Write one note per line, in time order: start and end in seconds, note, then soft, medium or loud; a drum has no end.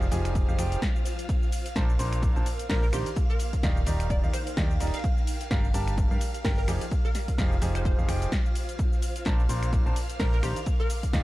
0.00 1.87 F4 medium
0.00 1.96 C5 medium
0.00 1.28 F5 medium
0.00 1.29 F5 medium
0.00 1.28 F6 medium
0.00 snare soft
0.00 shaker soft
0.11 0.46 F1 loud
0.11 0.45 F3 medium
0.11 0.45 D#4 medium
0.11 0.45 G4 medium
0.11 0.45 G#4 medium
0.11 0.45 G#5 medium
0.11 open hi-hat medium
0.11 ride medium
0.11 shaker medium
0.25 finger snap medium
0.25 closed hi-hat medium
0.25 shaker soft
0.35 kick loud
0.35 closed hi-hat medium
0.35 ride medium
0.35 shaker soft
0.48 0.57 F1 medium
0.48 0.57 F3 medium
0.48 0.57 D#4 medium
0.48 0.57 G4 medium
0.48 0.57 G#4 medium
0.48 0.57 F5 medium
0.48 shaker soft
0.58 0.77 F1 loud
0.58 0.79 F3 medium
0.58 0.79 D#4 medium
0.58 0.79 G4 medium
0.58 0.79 G#4 medium
0.58 0.79 G5 medium
0.58 finger snap medium
0.58 open hi-hat loud
0.58 ride medium
0.58 shaker medium
0.72 snare medium
0.72 closed hi-hat medium
0.72 shaker soft
0.82 kick loud
0.82 snare loud
0.82 closed hi-hat medium
0.82 ride medium
0.82 shaker soft
0.96 shaker soft
1.05 snare loud
1.05 open hi-hat medium
1.05 ride medium
1.05 shaker medium
1.19 snare soft
1.19 closed hi-hat medium
1.19 shaker soft
1.29 5.70 A#4 medium
1.29 8.78 F5 medium
1.29 8.78 F6 medium
1.29 kick loud
1.29 closed hi-hat medium
1.29 ride medium
1.29 shaker soft
1.42 snare medium
1.42 shaker soft
1.52 open hi-hat loud
1.52 ride medium
1.52 shaker medium
1.65 snare soft
1.65 closed hi-hat medium
1.65 shaker soft
1.74 1.97 A#1 loud
1.74 1.90 A#2 medium
1.74 1.90 D4 medium
1.74 1.90 A#4 medium
1.74 1.90 C5 medium
1.74 5.70 F5 medium
1.74 1.90 A5 loud
1.74 kick loud
1.74 snare loud
1.74 closed hi-hat medium
1.74 ride medium
1.74 shaker soft
1.89 shaker soft
1.99 2.33 A#1 loud
1.99 2.33 A#2 medium
1.99 2.33 D4 medium
1.99 2.33 A#4 medium
1.99 2.33 C5 medium
1.99 2.33 C6 medium
1.99 open hi-hat medium
1.99 ride medium
1.99 shaker medium
2.13 3.92 C6 medium
2.13 3.92 D6 medium
2.13 finger snap medium
2.13 closed hi-hat medium
2.13 shaker soft
2.23 kick loud
2.23 closed hi-hat medium
2.23 ride medium
2.23 shaker soft
2.36 2.43 A#1 loud
2.36 2.45 A#2 medium
2.36 2.45 D4 medium
2.36 2.45 A#4 medium
2.36 2.45 C5 medium
2.36 2.45 A5 medium
2.36 shaker soft
2.46 snare medium
2.46 open hi-hat loud
2.46 ride medium
2.46 shaker medium
2.59 closed hi-hat medium
2.59 shaker soft
2.69 2.91 A#1 loud
2.69 2.83 A#2 medium
2.69 2.83 D4 medium
2.69 2.83 A#4 medium
2.69 2.78 A#4 medium
2.69 2.83 C5 medium
2.69 2.83 A#5 medium
2.69 kick loud
2.69 snare loud
2.69 closed hi-hat medium
2.69 open hi-hat medium
2.69 shaker soft
2.83 2.89 A#4 medium
2.83 shaker soft
2.93 3.04 A#1 loud
2.93 3.07 D#3 medium
2.93 3.07 D4 medium
2.93 3.07 G4 medium
2.93 3.07 A#4 medium
2.93 3.07 C5 medium
2.93 3.07 C6 medium
2.93 finger snap medium
2.93 open hi-hat medium
2.93 ride medium
2.93 shaker medium
3.06 closed hi-hat medium
3.06 shaker soft
3.16 5.04 D#4 medium
3.16 kick loud
3.16 closed hi-hat medium
3.16 ride medium
3.16 shaker soft
3.30 3.41 A#4 medium
3.30 shaker soft
3.39 snare medium
3.39 open hi-hat loud
3.39 ride medium
3.39 shaker medium
3.47 5.70 G5 medium
3.53 kick medium
3.53 snare medium
3.53 closed hi-hat medium
3.53 shaker soft
3.63 3.85 D#1 loud
3.63 3.77 D#3 medium
3.63 3.77 D#4 medium
3.63 3.77 G4 medium
3.63 3.77 D5 medium
3.63 3.77 F5 loud
3.63 kick loud
3.63 snare loud
3.63 closed hi-hat medium
3.63 ride medium
3.63 shaker soft
3.77 snare soft
3.77 shaker soft
3.86 4.21 D#1 loud
3.86 4.20 D#3 medium
3.86 4.20 D#4 medium
3.86 4.20 G4 medium
3.86 4.20 D5 medium
3.86 4.20 A#5 medium
3.86 open hi-hat loud
3.86 ride medium
3.86 shaker medium
4.00 finger snap medium
4.00 closed hi-hat medium
4.00 shaker soft
4.10 4.24 D5 medium
4.10 kick loud
4.10 closed hi-hat medium
4.10 ride medium
4.10 shaker soft
4.24 4.30 D#1 loud
4.24 4.32 D#3 medium
4.24 4.32 D#4 medium
4.24 4.32 G4 medium
4.24 4.32 D5 medium
4.24 4.32 F5 medium
4.24 shaker soft
4.34 4.48 C5 loud
4.34 finger snap medium
4.34 open hi-hat loud
4.34 ride medium
4.34 shaker medium
4.47 snare medium
4.47 closed hi-hat medium
4.47 shaker soft
4.57 4.78 D#2 loud
4.57 4.71 D#3 medium
4.57 4.71 D#4 medium
4.57 4.71 G4 medium
4.57 4.71 D5 medium
4.57 4.71 G5 medium
4.57 kick loud
4.57 snare loud
4.57 closed hi-hat medium
4.57 ride medium
4.57 shaker soft
4.71 shaker soft
4.80 4.92 D#1 loud
4.80 4.94 D#4 medium
4.80 4.94 G4 medium
4.80 4.94 D5 medium
4.80 4.94 A#5 medium
4.80 snare medium
4.80 open hi-hat loud
4.80 ride medium
4.80 shaker medium
4.87 snare medium
4.87 ride medium
4.94 5.09 F5 loud
4.94 snare medium
4.94 closed hi-hat medium
4.94 ride medium
4.94 shaker soft
4.99 snare medium
4.99 ride medium
5.04 6.68 G4 medium
5.04 kick loud
5.04 closed hi-hat medium
5.04 ride loud
5.04 shaker soft
5.17 snare medium
5.17 shaker soft
5.27 open hi-hat loud
5.27 ride medium
5.27 shaker medium
5.41 snare soft
5.41 closed hi-hat medium
5.41 shaker soft
5.46 7.54 D5 medium
5.51 5.72 G1 loud
5.51 5.65 G3 medium
5.51 5.65 D4 medium
5.51 5.65 G4 medium
5.51 5.65 A#4 medium
5.51 5.65 F5 loud
5.51 kick loud
5.51 snare loud
5.51 closed hi-hat medium
5.51 ride medium
5.51 shaker soft
5.64 shaker soft
5.74 6.08 G1 loud
5.74 6.08 G3 medium
5.74 6.08 D4 medium
5.74 6.08 G4 medium
5.74 6.08 A#4 medium
5.74 6.08 A5 medium
5.74 open hi-hat loud
5.74 ride medium
5.74 shaker medium
5.78 7.54 A#5 medium
5.88 finger snap medium
5.88 closed hi-hat medium
5.88 shaker soft
5.98 kick loud
5.98 closed hi-hat medium
5.98 ride medium
5.98 shaker soft
6.11 6.18 G2 medium
6.11 6.20 G3 medium
6.11 6.20 D4 medium
6.11 6.20 G4 medium
6.11 6.20 A#4 medium
6.11 6.20 F5 medium
6.11 shaker soft
6.21 snare soft
6.21 open hi-hat loud
6.21 ride medium
6.21 shaker medium
6.34 closed hi-hat medium
6.34 shaker soft
6.44 6.66 G1 loud
6.44 6.58 D4 medium
6.44 6.58 G4 medium
6.44 6.58 A#4 medium
6.44 6.53 A#4 medium
6.44 6.58 G5 medium
6.44 kick loud
6.44 snare loud
6.44 closed hi-hat medium
6.44 open hi-hat medium
6.44 shaker soft
6.58 6.64 A#4 medium
6.58 shaker soft
6.68 6.79 F1 loud
6.68 6.82 F3 medium
6.68 6.82 D#4 medium
6.68 9.55 F4 medium
6.68 6.82 G4 medium
6.68 6.82 G#4 medium
6.68 6.82 G#5 medium
6.68 finger snap medium
6.68 open hi-hat loud
6.68 ride medium
6.68 shaker medium
6.81 closed hi-hat medium
6.81 shaker soft
6.91 kick loud
6.91 closed hi-hat medium
6.91 ride medium
6.91 shaker soft
7.05 7.16 A#4 medium
7.05 shaker soft
7.15 snare medium
7.15 open hi-hat loud
7.15 ride medium
7.15 shaker medium
7.28 kick medium
7.28 snare medium
7.28 closed hi-hat medium
7.28 shaker soft
7.38 7.60 F1 loud
7.38 7.52 F3 medium
7.38 7.52 D#4 medium
7.38 7.52 G4 medium
7.38 7.52 G#4 medium
7.38 9.55 C5 medium
7.38 7.52 F5 loud
7.38 kick loud
7.38 snare loud
7.38 closed hi-hat medium
7.38 ride loud
7.38 shaker soft
7.52 snare soft
7.52 shaker soft
7.62 7.96 F1 loud
7.62 7.95 F3 medium
7.62 7.95 D#4 medium
7.62 7.95 G4 medium
7.62 7.95 G#4 medium
7.62 7.95 G#5 medium
7.62 open hi-hat loud
7.62 ride medium
7.62 shaker medium
7.75 7.82 C5 medium
7.75 finger snap medium
7.75 closed hi-hat medium
7.75 shaker soft
7.85 7.94 C5 medium
7.85 kick loud
7.85 closed hi-hat soft
7.85 ride medium
7.85 shaker soft
7.99 8.07 F1 medium
7.99 8.07 F3 medium
7.99 8.07 D#4 medium
7.99 8.07 G4 medium
7.99 8.07 G#4 medium
7.99 8.07 F5 medium
7.99 shaker soft
8.09 8.27 F1 loud
8.09 8.29 F3 medium
8.09 8.29 D#4 medium
8.09 8.29 G4 medium
8.09 8.29 G#4 medium
8.09 8.29 G5 medium
8.09 finger snap medium
8.09 open hi-hat loud
8.09 ride medium
8.09 shaker medium
8.22 snare medium
8.22 closed hi-hat medium
8.22 shaker soft
8.32 kick loud
8.32 snare loud
8.32 closed hi-hat medium
8.32 ride medium
8.32 shaker soft
8.46 shaker soft
8.55 open hi-hat loud
8.55 ride medium
8.55 shaker medium
8.69 closed hi-hat medium
8.69 ride soft
8.69 shaker soft
8.79 11.23 A#4 medium
8.79 11.23 F5 medium
8.79 11.23 F6 medium
8.79 kick loud
8.79 closed hi-hat medium
8.79 ride medium
8.79 shaker soft
8.93 snare soft
8.93 shaker soft
9.02 open hi-hat loud
9.02 ride medium
9.02 shaker medium
9.16 snare soft
9.16 closed hi-hat medium
9.16 shaker soft
9.25 9.47 A#1 loud
9.25 9.40 A#2 medium
9.25 9.40 D4 medium
9.25 9.40 A#4 medium
9.25 9.40 C5 medium
9.25 9.40 A5 loud
9.25 kick loud
9.25 snare loud
9.25 closed hi-hat medium
9.25 ride medium
9.25 shaker soft
9.35 11.23 D6 medium
9.39 11.23 F5 medium
9.39 shaker soft
9.49 9.83 A#1 loud
9.49 9.83 A#2 medium
9.49 9.83 D4 medium
9.49 9.83 A#4 medium
9.49 9.83 C5 medium
9.49 9.83 C6 medium
9.49 open hi-hat loud
9.49 ride medium
9.49 shaker medium
9.63 11.23 C6 medium
9.63 finger snap medium
9.63 closed hi-hat medium
9.63 shaker soft
9.73 kick loud
9.73 closed hi-hat soft
9.73 ride medium
9.73 shaker soft
9.86 9.93 A#1 loud
9.86 9.95 A#2 medium
9.86 9.95 D4 medium
9.86 9.95 A#4 medium
9.86 9.95 C5 medium
9.86 9.95 A5 medium
9.86 shaker soft
9.96 snare soft
9.96 open hi-hat loud
9.96 ride medium
9.96 shaker medium
10.10 closed hi-hat medium
10.10 shaker soft
10.20 10.41 A#1 loud
10.20 10.34 A#2 medium
10.20 10.34 D4 medium
10.20 10.28 A#4 medium
10.20 10.34 A#4 medium
10.20 10.34 C5 medium
10.20 10.34 A#5 medium
10.20 kick loud
10.20 snare loud
10.20 closed hi-hat medium
10.20 open hi-hat medium
10.20 shaker soft
10.33 10.39 A#4 medium
10.33 shaker soft
10.43 10.54 A#1 loud
10.43 10.57 D#3 medium
10.43 10.57 D4 medium
10.43 10.57 G4 medium
10.43 10.57 A#4 medium
10.43 10.57 C5 medium
10.43 10.57 C6 medium
10.43 finger snap medium
10.43 open hi-hat medium
10.43 ride medium
10.43 shaker medium
10.56 closed hi-hat medium
10.56 shaker soft
10.66 11.23 D#4 loud
10.66 kick loud
10.66 closed hi-hat medium
10.66 ride medium
10.66 shaker soft
10.80 10.91 A#4 loud
10.80 shaker soft
10.90 snare medium
10.90 open hi-hat loud
10.90 ride medium
10.90 shaker medium
11.03 kick medium
11.03 snare medium
11.03 closed hi-hat medium
11.03 shaker soft
11.13 11.23 D#1 loud
11.13 11.23 D#3 loud
11.13 11.23 D#4 medium
11.13 11.23 G4 medium
11.13 11.23 D5 medium
11.13 11.23 F5 loud
11.13 kick loud
11.13 snare loud
11.13 closed hi-hat medium
11.13 ride medium
11.13 shaker soft